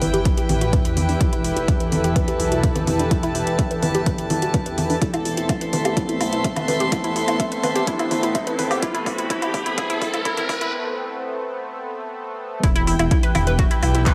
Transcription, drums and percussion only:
0.02 open hi-hat loud
0.02 low conga medium
0.14 closed hi-hat soft
0.25 kick loud
0.25 closed hi-hat medium
0.37 closed hi-hat soft
0.49 open hi-hat loud
0.49 low conga medium
0.61 closed hi-hat soft
0.73 kick loud
0.73 closed hi-hat medium
0.85 closed hi-hat soft
0.97 open hi-hat loud
0.97 low conga medium
1.09 open hi-hat medium
1.21 kick loud
1.21 closed hi-hat medium
1.33 closed hi-hat soft
1.44 open hi-hat loud
1.57 closed hi-hat soft
1.68 kick loud
1.68 closed hi-hat medium
1.80 closed hi-hat soft
1.92 open hi-hat loud
1.92 low conga medium
2.04 closed hi-hat soft
2.16 kick loud
2.16 closed hi-hat medium
2.28 closed hi-hat soft
2.40 open hi-hat loud
2.52 closed hi-hat soft
2.63 kick loud
2.63 closed hi-hat medium
2.76 closed hi-hat soft
2.76 low conga medium
2.87 open hi-hat loud
2.87 low conga medium
2.99 closed hi-hat soft
3.11 kick loud
3.11 closed hi-hat medium
3.23 closed hi-hat soft
3.35 open hi-hat loud
3.47 closed hi-hat soft
3.59 kick loud
3.59 closed hi-hat medium
3.71 closed hi-hat soft
3.83 open hi-hat loud
3.83 low conga medium
3.95 closed hi-hat soft
4.06 kick loud
4.06 closed hi-hat medium
4.18 closed hi-hat soft
4.30 open hi-hat loud
4.30 low conga medium
4.42 closed hi-hat soft
4.54 kick loud
4.54 closed hi-hat medium
4.66 closed hi-hat soft
4.78 open hi-hat loud
4.78 low conga medium
4.90 open hi-hat medium
5.02 kick loud
5.02 closed hi-hat medium
5.14 closed hi-hat soft
5.14 low woodblock medium
5.25 open hi-hat loud
5.37 closed hi-hat soft
5.49 kick loud
5.49 closed hi-hat medium
5.49 low woodblock medium
5.61 closed hi-hat soft
5.73 open hi-hat loud
5.73 low conga medium
5.85 closed hi-hat soft
5.85 low woodblock medium
5.97 kick loud
5.97 closed hi-hat medium
6.09 closed hi-hat soft
6.21 open hi-hat loud
6.21 low woodblock medium
6.33 closed hi-hat soft
6.44 kick loud
6.44 closed hi-hat medium
6.56 closed hi-hat soft
6.56 low conga medium
6.56 low woodblock medium
6.68 open hi-hat loud
6.68 low conga medium
6.80 closed hi-hat soft
6.92 kick loud
6.92 closed hi-hat medium
6.92 low woodblock medium
7.04 closed hi-hat soft
7.16 open hi-hat loud
7.28 closed hi-hat soft
7.28 low woodblock medium
7.40 kick loud
7.40 closed hi-hat medium
7.52 closed hi-hat soft
7.63 open hi-hat loud
7.63 low conga medium
7.63 low woodblock medium
7.76 closed hi-hat soft
7.87 kick loud
7.87 closed hi-hat medium
7.99 closed hi-hat soft
7.99 low woodblock soft
8.11 open hi-hat loud
8.11 low conga medium
8.23 closed hi-hat soft
8.35 kick loud
8.35 closed hi-hat medium
8.35 low woodblock soft
8.47 closed hi-hat soft
8.59 open hi-hat loud
8.59 low conga medium
8.71 open hi-hat medium
8.71 low woodblock medium
8.82 kick loud
8.82 closed hi-hat medium
8.95 closed hi-hat soft
9.06 kick loud
9.06 open hi-hat loud
9.06 low woodblock medium
9.18 closed hi-hat soft
9.30 kick loud
9.30 closed hi-hat medium
9.42 closed hi-hat soft
9.42 low woodblock soft
9.54 kick loud
9.54 open hi-hat loud
9.54 low conga medium
9.66 closed hi-hat soft
9.78 kick loud
9.78 closed hi-hat medium
9.78 low woodblock medium
9.90 closed hi-hat soft
10.02 kick loud
10.02 open hi-hat loud
10.14 closed hi-hat soft
10.14 low woodblock soft
10.25 kick loud
10.25 closed hi-hat medium
10.37 closed hi-hat soft
10.37 low conga loud
10.49 kick loud
10.49 open hi-hat loud
10.49 low conga medium
10.49 low woodblock medium
10.61 closed hi-hat soft
12.63 kick loud
12.63 closed hi-hat medium
12.76 closed hi-hat soft
12.87 open hi-hat loud
12.99 closed hi-hat soft
12.99 low woodblock medium
13.11 kick loud
13.11 closed hi-hat medium
13.23 closed hi-hat soft
13.35 open hi-hat loud
13.35 low conga medium
13.35 low woodblock medium
13.47 closed hi-hat soft
13.59 kick loud
13.59 closed hi-hat medium
13.71 closed hi-hat soft
13.83 open hi-hat loud
13.83 low woodblock medium
13.95 closed hi-hat soft
14.06 kick loud
14.06 clap loud
14.06 closed hi-hat medium

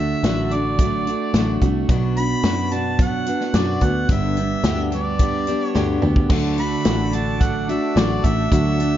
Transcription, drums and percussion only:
0.24 snare loud
0.24 closed hi-hat medium
0.51 closed hi-hat medium
0.79 kick medium
0.79 closed hi-hat medium
1.07 closed hi-hat soft
1.34 snare medium
1.34 closed hi-hat medium
1.62 kick medium
1.62 closed hi-hat medium
1.89 kick loud
1.89 closed hi-hat medium
2.17 closed hi-hat medium
2.43 snare loud
2.43 closed hi-hat medium
2.71 closed hi-hat medium
2.99 kick loud
2.99 closed hi-hat medium
3.26 closed hi-hat medium
3.41 snare soft
3.54 snare medium
3.54 closed hi-hat medium
3.81 kick medium
3.81 closed hi-hat medium
4.09 kick loud
4.09 closed hi-hat medium
4.37 closed hi-hat medium
4.64 snare loud
4.64 closed hi-hat medium
4.92 closed hi-hat medium
5.19 kick medium
5.19 closed hi-hat medium
5.47 closed hi-hat medium
5.75 snare medium
6.02 mid tom medium
6.16 kick medium
6.30 kick loud
6.30 crash medium
6.58 closed hi-hat medium
6.85 snare loud
6.85 closed hi-hat medium
7.13 closed hi-hat medium
7.41 kick medium
7.41 closed hi-hat medium
7.69 closed hi-hat medium
7.97 snare loud
7.97 closed hi-hat medium
8.24 kick medium
8.24 closed hi-hat medium
8.52 kick loud
8.52 closed hi-hat medium
8.80 closed hi-hat medium

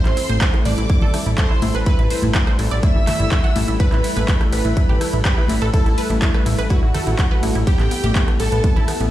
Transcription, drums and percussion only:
0.05 clap soft
0.05 closed hi-hat soft
0.17 open hi-hat loud
0.17 ride medium
0.29 closed hi-hat medium
0.29 high conga medium
0.41 kick loud
0.41 clap loud
0.41 closed hi-hat medium
0.41 ride medium
0.54 cross-stick medium
0.54 closed hi-hat soft
0.65 open hi-hat loud
0.65 ride medium
0.78 closed hi-hat soft
0.89 kick loud
0.89 closed hi-hat medium
0.89 ride medium
0.89 high conga medium
1.02 low conga medium
1.14 cross-stick medium
1.14 open hi-hat loud
1.14 ride medium
1.26 closed hi-hat medium
1.38 kick loud
1.38 clap loud
1.38 closed hi-hat medium
1.38 ride medium
1.62 open hi-hat loud
1.62 ride medium
1.62 high conga loud
1.75 closed hi-hat soft
1.86 kick loud
1.86 closed hi-hat medium
1.86 ride medium
1.99 closed hi-hat soft
2.10 open hi-hat loud
2.10 ride medium
2.22 closed hi-hat medium
2.22 high conga medium
2.35 kick loud
2.35 clap loud
2.35 closed hi-hat medium
2.35 ride medium
2.47 cross-stick medium
2.47 closed hi-hat soft
2.59 open hi-hat loud
2.59 ride medium
2.71 closed hi-hat soft
2.83 kick loud
2.83 closed hi-hat medium
2.83 ride medium
2.83 high conga medium
3.07 cross-stick medium
3.07 clap soft
3.07 open hi-hat loud
3.07 ride medium
3.07 low conga medium
3.20 closed hi-hat medium
3.31 kick loud
3.31 clap loud
3.31 closed hi-hat medium
3.31 ride medium
3.44 closed hi-hat soft
3.56 open hi-hat loud
3.56 ride medium
3.56 high conga medium
3.68 closed hi-hat soft
3.80 kick loud
3.80 closed hi-hat medium
3.80 ride medium
3.92 clap soft
3.92 closed hi-hat soft
4.04 open hi-hat loud
4.04 ride medium
4.16 closed hi-hat medium
4.16 high conga medium
4.28 kick loud
4.28 clap loud
4.28 closed hi-hat medium
4.28 ride medium
4.41 cross-stick medium
4.41 closed hi-hat soft
4.53 open hi-hat medium
4.53 ride medium
4.65 closed hi-hat soft
4.76 kick loud
4.76 closed hi-hat medium
4.76 ride medium
4.76 high conga medium
4.90 low conga medium
5.01 cross-stick medium
5.01 open hi-hat loud
5.01 ride medium
5.13 closed hi-hat medium
5.25 kick loud
5.25 clap loud
5.25 closed hi-hat medium
5.25 ride medium
5.48 open hi-hat medium
5.48 ride medium
5.48 high conga medium
5.62 closed hi-hat soft
5.74 kick loud
5.74 closed hi-hat medium
5.74 ride medium
5.86 closed hi-hat soft
5.98 open hi-hat loud
5.98 ride medium
6.10 closed hi-hat medium
6.10 high conga medium
6.22 kick loud
6.22 clap loud
6.22 closed hi-hat medium
6.22 ride medium
6.34 cross-stick medium
6.34 closed hi-hat soft
6.46 open hi-hat medium
6.46 ride medium
6.59 closed hi-hat soft
6.70 kick loud
6.70 closed hi-hat medium
6.70 ride medium
6.70 high conga medium
6.95 cross-stick medium
6.95 open hi-hat loud
6.95 ride medium
6.95 low conga loud
7.07 closed hi-hat medium
7.19 kick loud
7.19 clap loud
7.19 closed hi-hat medium
7.19 ride medium
7.43 open hi-hat medium
7.43 ride medium
7.43 high conga medium
7.55 closed hi-hat medium
7.67 kick loud
7.67 closed hi-hat medium
7.67 ride medium
7.79 clap soft
7.79 closed hi-hat soft
7.91 open hi-hat loud
7.91 ride medium
8.04 closed hi-hat medium
8.04 high conga medium
8.15 kick loud
8.15 clap loud
8.15 closed hi-hat medium
8.15 ride medium
8.28 cross-stick medium
8.28 closed hi-hat soft
8.40 open hi-hat medium
8.40 ride medium
8.52 closed hi-hat medium
8.64 kick loud
8.64 closed hi-hat medium
8.64 ride medium
8.64 high conga medium
8.77 low conga medium
8.88 cross-stick medium
8.88 open hi-hat loud
8.88 ride medium
9.01 closed hi-hat medium

